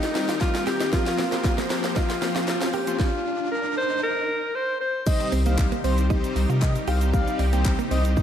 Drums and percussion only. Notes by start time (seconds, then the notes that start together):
0.03 snare, closed hi-hat, shaker
0.15 snare, open hi-hat, shaker
0.29 snare, closed hi-hat, shaker
0.41 kick, snare, clap, shaker
0.55 snare, closed hi-hat, shaker
0.67 snare, open hi-hat, shaker
0.80 snare, closed hi-hat, shaker
0.93 kick, snare, shaker
1.06 snare, closed hi-hat, shaker
1.18 snare, open hi-hat, shaker
1.32 snare, closed hi-hat, shaker
1.44 kick, snare, clap, shaker
1.58 snare, closed hi-hat, shaker
1.70 snare, open hi-hat, shaker
1.84 snare, closed hi-hat, shaker
1.96 kick, snare, shaker
2.10 snare, closed hi-hat, shaker
2.22 snare, open hi-hat, shaker
2.36 snare, closed hi-hat, shaker
2.48 snare, clap, shaker
2.62 snare, closed hi-hat, shaker
2.73 open hi-hat, shaker
2.87 closed hi-hat, shaker
3.00 kick, snare
5.06 kick, crash, shaker
5.21 closed hi-hat, shaker
5.32 open hi-hat, shaker
5.46 closed hi-hat, shaker
5.58 kick, clap, shaker
5.72 closed hi-hat, shaker
5.84 open hi-hat, shaker
5.98 closed hi-hat, shaker
6.10 kick, shaker
6.24 closed hi-hat, shaker
6.36 open hi-hat, shaker
6.50 closed hi-hat, shaker
6.62 kick, clap, shaker
6.76 closed hi-hat, shaker
6.88 open hi-hat, shaker
7.01 closed hi-hat, shaker
7.14 kick, shaker
7.28 closed hi-hat, shaker
7.39 open hi-hat, shaker
7.53 closed hi-hat, shaker
7.65 kick, clap, shaker
7.79 closed hi-hat, shaker
7.91 open hi-hat, shaker
8.05 closed hi-hat, shaker
8.17 kick, shaker